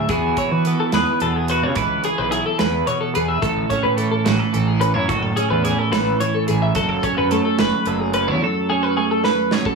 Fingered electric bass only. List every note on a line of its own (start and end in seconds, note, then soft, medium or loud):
0.09 0.30 E2 medium
0.51 0.72 E3 medium
0.93 1.03 E2 medium
1.21 1.64 E2 medium
1.62 1.73 C#3 medium
1.76 1.98 C#2 medium
2.18 2.39 B1 medium
2.60 2.81 E2 medium
3.16 3.37 E2 medium
3.42 3.64 A1 medium
3.85 4.06 A2 medium
4.26 4.37 A1 medium
4.55 4.96 A1 medium
4.96 5.06 F#2 medium
5.09 5.30 F#1 medium
5.51 5.72 E2 medium
5.92 6.14 A1 medium
6.49 6.70 A1 medium
6.75 6.97 F#1 loud
7.17 7.38 F#2 medium
7.60 7.70 F#1 medium
7.86 8.30 F#1 medium
8.28 8.39 E2 medium